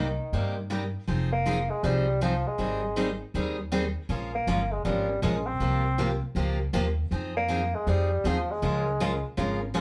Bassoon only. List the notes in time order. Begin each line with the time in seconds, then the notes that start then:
Already playing: D#3
1.32 A#3
1.70 G#3
1.84 G3
2.22 F3
2.47 G#3
4.35 A#3
4.72 G#3
4.85 G3
5.23 G#3
5.46 C4
7.37 A#3
7.75 G#3
7.89 G3
8.28 F3
8.51 G#3